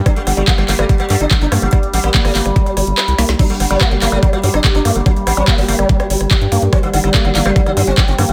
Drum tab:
CC |----------------|----------------|x---------------|----------------|
HH |xxoxxxoxxxoxxxox|xxoxxooxxxoxxxox|xxoxxxoxxxoxxxox|xxoxxooxxxoxxxox|
CP |----x-x-----x---|----x-x-----x---|----x-x-----x---|----x-------x---|
SD |r-r--r-r-r--r-r-|r--r-r-r--r-r-oo|--r-r-r--r-r-r--|r-r-r--r-r-r--r-|
BD |o---o---o---o---|o---o---o-------|o---o---o---o---|o---o---o---o---|

CC |----------------|
HH |xxoxxxo-xxoxxxox|
CP |----x-x-----x---|
SD |r-r--r-r-r--r-r-|
BD |o---o---o---o---|